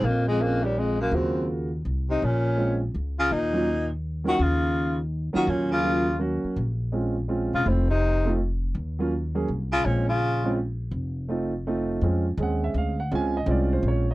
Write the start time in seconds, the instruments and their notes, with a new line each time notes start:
0.01 upright bass A#1, tenor saxophone A#3
0.07 baritone saxophone F2
0.28 baritone saxophone F2, tenor saxophone G#3
0.39 tenor saxophone A#3, grand piano C4 C#4 F4 G#4
0.43 baritone saxophone F2
0.64 baritone saxophone D#2, tenor saxophone G3
0.78 baritone saxophone F2, tenor saxophone G#3
1.00 baritone saxophone F#2, tenor saxophone A#3
1.11 upright bass D#2, baritone saxophone F#2, grand piano C#3 A#3 F4 F#4, tenor saxophone C4
1.85 upright bass C2
2.10 baritone saxophone C3, tenor saxophone D#4
2.22 upright bass A#1, baritone saxophone A#2, tenor saxophone C#4
2.57 grand piano G#3 C4 C#4 F4
2.94 upright bass C#2
3.19 baritone saxophone C#3, tenor saxophone F4
3.31 upright bass D#2, baritone saxophone A#2, tenor saxophone D#4
3.53 grand piano F#3 A#3 C#4 F4
4.24 baritone saxophone D#3, grand piano F#3 A#3 C#4 F4
4.28 tenor saxophone F#4
4.39 upright bass D#2, baritone saxophone C#3, tenor saxophone F4
5.33 baritone saxophone D#3, grand piano F#3 A#3 C#4 F4, tenor saxophone F#4, muted upright bass stroke
5.47 upright bass D#2, baritone saxophone A#2, tenor saxophone C#4
5.71 baritone saxophone C#3, tenor saxophone F4
5.83 grand piano F#3 A#3 C#4 F4
6.19 grand piano F#3 A#3 C#4 F#4
6.44 muted upright bass stroke
6.56 upright bass A#1
6.92 grand piano G#3 C4 C#4 F4
7.28 grand piano G#3 C4 C#4 F4
7.53 upright bass E1, baritone saxophone C#3, tenor saxophone F4
7.65 upright bass F1, baritone saxophone A2, grand piano A3 C4 D#4 F4, tenor saxophone C4
7.89 baritone saxophone C3, tenor saxophone D#4
8.25 grand piano A3 C4 D#4 F4
8.75 upright bass D#2
8.99 grand piano F#3 A#3 C#4 F4
9.35 grand piano F#3 A#3 C#4 G#4
9.48 upright bass C2
9.72 baritone saxophone C#3, tenor saxophone F4
9.85 upright bass A#1, baritone saxophone A#2, grand piano G#3 C4 C#4 F4, tenor saxophone C#4
10.08 baritone saxophone C#3, tenor saxophone F4
10.44 grand piano G#3 C4 C#4 F4
10.91 upright bass F1
11.28 grand piano A3 C4 D#4 F4
11.67 grand piano A3 C4 D#4 F4
12.01 upright bass F2, grand piano G#3 C4 C#4 F4
12.37 upright bass D#2, grand piano G#3 C4 C#4 G#4
12.43 grand piano F#5
12.64 grand piano E5
12.74 upright bass D2, grand piano F5
13.00 grand piano F#5
13.11 upright bass C#2, grand piano G#3 C4 C#4 F4 G#5
13.37 grand piano D#5
13.46 upright bass C2, grand piano G#3 C4 C#4 F4
13.51 grand piano D5
13.73 grand piano C5
13.83 upright bass A#1
13.88 grand piano C#5
14.11 grand piano D#5